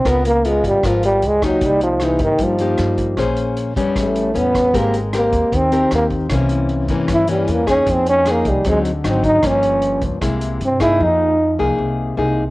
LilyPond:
<<
  \new Staff \with { instrumentName = "Nylon-string guitar" } { \time 4/4 \key f \minor \tempo 4 = 153 << { <ces' f' bes'>8 r8 <ces' f' bes'>4 <ces' f' bes'>4 r8 <bes ees' g'>8~ | <bes ees' g'>4 <bes ees' g'>4. <bes ees' g'>4. | <des' aes' c''>4. <g b des'>4. <g b cis'>4 | <c' g' bes'>8 r8 <c' g' bes'>4. <c' g' bes'>4. |
<e bes des'>4. <e bes des'>4 <e bes des'>4 <bes ees' aes'>8~ | <bes ees' aes'>4 <bes ees' aes'>4 <fis c' ees'>8 r8 <fis c' ees'>4 | <f bes des'>2 <aes bes e'>4 r8 <bes ees' aes'>8~ | <bes ees' aes'>4 r8 <bes ees' aes'>4. <bes ees' aes'>8 r8 | } \\ { des2 aes,2 | c2 g2 | bes2 a,2 | aes2 ees2 |
c2 g,2 | f2 d2 | g,2 c2 | f2 c2 | } >> }
  \new Staff \with { instrumentName = "Trombone" } { \time 4/4 \key f \minor ces'8 bes8 aes8 g8 f8 g8 aes8 ges8 | g8 f8 e8 ees8 f2 | r2 a4 b4 | bes8 r8 bes4 c'4 bes8 r8 |
r2 e'8 g8 bes8 des'8 | c'8 des'8 bes8 g8 aes8 r8 c'8 ees'8 | des'4. r4. c'8 e'8 | ees'4. r2 r8 | }
  \new Staff \with { instrumentName = "Upright bass" } { \clef bass \time 4/4 \key f \minor des,4. aes,,16 r16 aes,,4 des,4 | c,4. g,16 r16 g,4 g,4 | bes,,4. f,16 r16 a,,4 e,4 | aes,,4. ees,16 r16 ees,4 ees,4 |
c,4. g,16 r16 g,4 e,4 | f,4. c,16 r16 d,4 aes,,4 | g,,4. des,16 r16 c,4 g,4 | f,4. c,16 r16 c,4 c,4 | }
  \new DrumStaff \with { instrumentName = "Drums" } \drummode { \time 4/4 <hh bd ss>8 hh8 hh8 <hh bd>8 <hh bd ss>8 hh8 hh8 <hh bd ss>8 | <hh bd>8 hh8 <hh ss>8 <hh bd>8 <hh bd>8 hh8 <hh ss>8 <hh bd>8 | <hh bd ss>8 hh8 hh8 <hh bd>8 <hh bd ss>8 hh8 hh8 <hh bd ss>8 | <hh bd>8 hh8 <hh ss>8 <hh bd>8 <hh bd>8 hh8 <hh ss>8 <hh bd>8 |
<hh bd ss>8 hh8 hh8 <hh bd>8 <hh bd ss>8 hh8 hh8 <hh bd ss>8 | <hh bd>8 hh8 <hh ss>8 <hh bd>8 <hh bd>8 hh8 <hh ss>8 <hh bd>8 | <hh bd ss>8 hh8 hh8 <hh bd>8 <hh bd ss>8 hh8 hh8 <hh bd ss>8 | r4 r4 r4 r4 | }
>>